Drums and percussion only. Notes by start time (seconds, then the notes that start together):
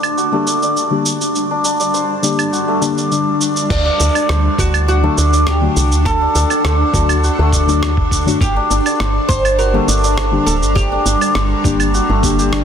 0.03 claves, shaker
0.18 shaker
0.47 shaker
0.62 shaker
0.77 shaker
1.06 shaker
1.21 shaker
1.35 shaker
1.65 shaker
1.80 shaker
1.94 shaker
2.23 shaker
2.39 claves, shaker
2.53 shaker
2.82 shaker
2.98 shaker
3.12 shaker
3.41 shaker
3.56 shaker
3.70 kick, crash, shaker
4.00 shaker
4.15 claves, shaker
4.29 cross-stick, shaker
4.58 kick, shaker
4.74 claves, shaker
4.88 shaker
5.18 shaker
5.33 shaker
5.47 cross-stick, shaker
5.77 shaker
5.92 shaker
6.05 kick, shaker
6.35 shaker
6.50 claves, shaker
6.65 cross-stick, shaker
6.94 kick, shaker
7.09 claves, shaker
7.24 shaker
7.53 kick, shaker
7.69 shaker
7.83 cross-stick, shaker
7.97 kick
8.11 kick, shaker
8.28 shaker
8.41 kick, shaker
8.71 shaker
8.86 claves, shaker
9.00 cross-stick, shaker
9.29 kick, shaker
9.45 claves, shaker
9.59 shaker
9.89 shaker
10.04 shaker
10.18 cross-stick, shaker
10.47 shaker
10.63 shaker
10.76 kick, shaker
11.06 shaker
11.21 claves, shaker
11.35 cross-stick, shaker
11.64 kick, shaker
11.80 claves, shaker
11.94 shaker
12.23 kick, shaker
12.39 shaker
12.53 cross-stick, shaker